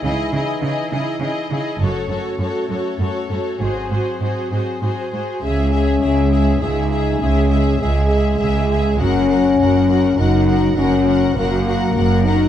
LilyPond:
<<
  \new Staff \with { instrumentName = "Violin section" } { \time 3/4 \key gis \phrygian \tempo 4 = 101 dis''8 dis''8 dis''8 dis''8 dis''8 dis''8 | cis''8 cis''8 cis''8 cis''8 cis''8 cis''8 | bis'8 bis'8 bis'8 bis'8 bis'8 bis'8 | \key cis \dorian e''8 e''8 e''8 e''8 e''8 e''8 |
e''8 e''8 e''8 e''8 e''8 e''8 | fis''8 fis''8 fis''8 fis''8 fis''8 fis''8 | fis''8 fis''8 fis''8 fis''8 fis''8 fis''8 | }
  \new Staff \with { instrumentName = "Violin section" } { \time 3/4 \key gis \phrygian gis'8 gis'8 gis'8 gis'8 gis'8 gis'8 | a'8 a'8 a'8 a'8 a'8 a'8 | gis'8 gis'8 gis'8 gis'8 gis'8 gis'8 | \key cis \dorian gis'8 gis'8 gis'8 gis'8 gis'8 gis'8 |
gis'8 gis'8 gis'8 gis'8 gis'8 gis'8 | ais'8 ais'8 ais'8 ais'8 ais'8 ais'8 | ais'8 ais'8 ais'8 ais'8 ais'8 ais'8 | }
  \new Staff \with { instrumentName = "Viola section" } { \time 3/4 \key gis \phrygian e'8 e'8 e'8 e'8 e'8 e'8 | fis'8 fis'8 fis'8 fis'8 fis'8 fis'8 | fis'8 fis'8 fis'8 fis'8 fis'8 fis'8 | \key cis \dorian gis'8 gis'8 gis'8 gis'8 gis'8 gis'8 |
gis'8 gis'8 gis'8 gis'8 gis'8 gis'8 | fis'8 fis'8 fis'8 fis'8 fis'8 fis'8 | fis'8 fis'8 fis'8 fis'8 fis'8 fis'8 | }
  \new Staff \with { instrumentName = "French horn section" } { \time 3/4 \key gis \phrygian <e dis'>2. | <a cis'>2. | <fis bis>2~ <fis bis>8 r8 | \key cis \dorian cis'2 dis'4 |
cis'4 gis2 | cis'2 dis'4 | cis'4 ais4. dis'8 | }
  \new Staff \with { instrumentName = "Cello section" } { \clef bass \time 3/4 \key gis \phrygian cis8 cis8 cis8 cis8 cis8 cis8 | fis,8 fis,8 fis,8 fis,8 fis,8 fis,8 | gis,8 gis,8 gis,8 gis,8 gis,8 gis,8 | \key cis \dorian cis,4 cis,4 cis,4 |
cis,4 cis,4 cis,4 | fis,4 fis,4 fis,4 | fis,4 fis,4 fis,4 | }
  \new Staff \with { instrumentName = "Double bass section" } { \clef bass \time 3/4 \key gis \phrygian cis,8 r2 r8 | fis,,8 r2 r8 | gis,,8 r2 r8 | \key cis \dorian cis,4 cis,4 cis,4 |
cis,4 cis,4 cis,4 | fis,,4 fis,,4 fis,,4 | fis,,4 fis,,4 fis,,4 | }
>>